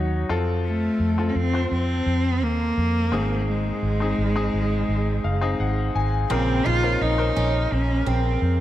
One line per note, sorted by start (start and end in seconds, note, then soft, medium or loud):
0.00 0.24 D#2 medium
0.00 0.25 F#3 medium
0.00 0.32 D#4 medium
0.00 0.32 F#4 medium
0.00 0.32 C#5 medium
0.29 0.88 F2 medium
0.29 1.00 C4 medium
0.29 1.01 F4 medium
0.29 1.01 A4 medium
0.66 1.30 A3 medium
1.00 1.29 F2 medium
1.18 1.45 C4 medium
1.18 1.46 F4 medium
1.18 1.46 A4 medium
1.29 1.38 C#4 medium
1.35 1.65 F2 loud
1.35 1.70 C4 medium
1.53 2.62 C4 medium
1.53 2.62 F4 medium
1.53 2.63 C5 medium
1.71 2.00 F2 medium
1.71 2.44 C4 medium
2.06 2.42 F2 medium
2.42 2.71 D#2 medium
2.42 3.48 A#3 loud
2.78 3.14 F2 medium
3.12 3.71 G#1 medium
3.12 4.14 G#2 medium
3.12 3.83 C4 medium
3.12 3.83 D#4 medium
3.12 3.83 G#4 medium
3.49 5.91 G#3 medium
3.83 4.12 G#1 medium
4.00 4.28 C4 medium
4.00 4.28 D#4 medium
4.00 4.29 G#4 medium
4.18 4.47 G#1 medium
4.36 5.17 C4 medium
4.36 5.18 D#4 medium
4.36 5.18 G#4 medium
4.54 4.83 G#1 medium
4.89 5.18 G#1 medium
5.24 5.53 F#1 medium
5.24 5.57 F5 medium
5.41 6.10 C4 medium
5.41 6.10 D#4 medium
5.41 6.10 G#4 medium
5.60 5.89 G#1 medium
5.60 5.93 F#5 medium
5.95 6.24 G#1 medium
5.95 6.28 G#5 medium
6.30 6.60 A#1 loud
6.30 7.32 A#2 medium
6.30 6.71 C#3 medium
6.30 6.67 C4 medium
6.30 6.64 C4 medium
6.30 6.71 C4 medium
6.30 6.72 A#4 medium
6.66 6.95 A#1 loud
6.66 7.15 D#4 medium
6.66 7.03 F4 loud
6.83 7.10 C4 medium
6.83 7.11 C#4 medium
6.83 7.11 A#4 medium
7.01 7.30 A#1 loud
7.01 7.74 D#4 medium
7.18 8.27 C#4 medium
7.18 8.27 A#4 medium
7.18 8.27 C5 medium
7.36 7.66 A#1 medium
7.36 7.53 C#4 medium
7.72 8.01 A#1 loud
7.72 8.09 C#4 medium
8.06 8.36 A#1 medium
8.06 8.40 C4 medium
8.06 8.60 C4 medium
8.42 8.60 F2 medium